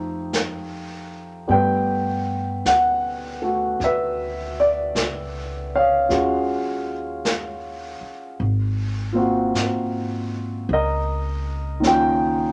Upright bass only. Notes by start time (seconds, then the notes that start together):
Already playing: F2
1.49 G2
2.65 D2
3.80 D2
4.95 C#2
6.10 D#2
8.01 muted upright bass stroke
8.40 G#1
9.54 G#2
10.69 C#2